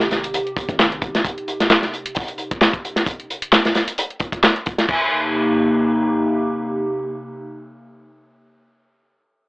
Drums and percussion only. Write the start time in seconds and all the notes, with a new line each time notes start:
0.00 snare, closed hi-hat
0.11 snare, closed hi-hat
0.23 closed hi-hat
0.34 closed hi-hat
0.47 closed hi-hat
0.57 kick, closed hi-hat
0.69 kick, closed hi-hat
0.79 snare, clap, closed hi-hat
0.92 closed hi-hat
1.02 kick, closed hi-hat
1.15 snare, closed hi-hat
1.25 kick, closed hi-hat
1.38 closed hi-hat
1.48 closed hi-hat
1.60 snare, closed hi-hat
1.70 snare, clap, closed hi-hat
1.83 snare, closed hi-hat
1.94 closed hi-hat
2.06 closed hi-hat
2.15 kick, closed hi-hat, open hi-hat
2.28 closed hi-hat
2.38 closed hi-hat
2.51 kick, closed hi-hat
2.61 snare, clap, closed hi-hat
2.73 kick, closed hi-hat
2.85 closed hi-hat
2.96 snare, closed hi-hat
3.06 kick, closed hi-hat
3.20 closed hi-hat
3.30 closed hi-hat
3.42 closed hi-hat
3.52 snare, clap, closed hi-hat
3.65 snare, closed hi-hat
3.75 snare, closed hi-hat
3.87 closed hi-hat
3.98 closed hi-hat
4.10 closed hi-hat
4.20 kick, closed hi-hat
4.32 kick, closed hi-hat
4.43 snare, clap, closed hi-hat
4.56 closed hi-hat
4.66 kick, closed hi-hat
4.78 snare, closed hi-hat
4.89 kick, crash